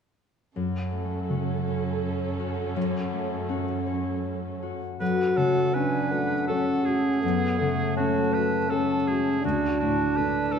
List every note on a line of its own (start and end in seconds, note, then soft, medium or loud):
0.55 4.76 F#2 soft
0.55 2.72 F#2 soft
0.55 2.75 F#2 soft
0.55 4.77 C#4 soft
0.55 4.77 A4 soft
0.92 3.12 A3 soft
1.30 3.63 C#3 soft
1.30 2.38 F#4 soft
1.68 3.85 C#5 soft
2.39 3.48 F#4 soft
2.76 4.97 F#2 soft
2.76 4.99 F#2 soft
3.13 5.38 A3 soft
3.49 5.01 C#4 soft
3.49 4.61 F#4 soft
3.87 7.77 C#5 soft
4.63 5.74 F#4 soft
4.99 7.22 F#2 soft
4.99 7.19 F#2 soft
4.99 5.71 F#4 medium
4.99 5.37 A4 soft
4.99 5.39 B4 soft
4.99 5.75 F#5 soft
5.35 5.97 C#3 soft
5.35 6.12 A3 soft
5.35 5.75 A4 soft
5.35 5.75 C#5 soft
5.73 6.34 C#4 soft
5.73 6.49 D4 medium
5.73 7.95 F#4 soft
5.73 6.13 B4 soft
5.73 6.47 B4 soft
5.73 6.13 G#5 soft
6.11 6.86 A3 soft
6.11 6.71 F#4 soft
6.11 6.49 A4 soft
6.11 7.22 F#5 soft
6.47 7.12 F#3 soft
6.47 7.22 C#4 soft
6.47 6.85 F#4 soft
6.47 6.87 A4 soft
6.47 7.08 A4 soft
6.83 8.32 A3 soft
6.83 7.45 F#4 soft
6.83 7.20 G#4 soft
6.83 7.96 G#4 soft
7.21 9.46 F#2 soft
7.21 9.40 F#2 soft
7.21 7.58 B3 soft
7.21 7.94 A4 soft
7.21 7.97 F#5 soft
7.59 9.47 C#3 soft
7.59 8.19 C#3 soft
7.59 8.70 A3 soft
7.96 8.57 C#4 soft
7.96 10.59 F#4 soft
7.96 8.36 F#4 soft
7.96 8.33 C#5 soft
7.96 9.42 A5 soft
8.32 9.06 A3 soft
8.32 8.70 B4 soft
8.32 8.72 B4 soft
8.36 8.94 F#4 soft
8.69 9.32 F#3 soft
8.69 9.43 C#4 soft
8.69 9.08 A4 soft
8.69 9.09 A4 soft
8.69 9.30 A4 soft
9.07 10.59 A3 soft
9.07 9.45 F#4 soft
9.07 9.43 G#4 soft
9.07 9.44 G#4 soft
9.41 10.59 D3 soft
9.41 10.59 D4 medium
9.41 10.19 F#4 soft
9.41 10.59 A5 soft
9.45 10.59 D2 soft
9.45 9.80 F#4 soft
9.80 10.40 A2 soft
9.80 10.52 D4 soft
9.80 10.18 F#4 soft
10.16 10.59 D4 soft
10.16 10.52 A4 soft
10.16 10.54 B4 soft
10.52 10.59 D4 soft
10.52 10.59 A4 soft
10.52 10.59 B4 soft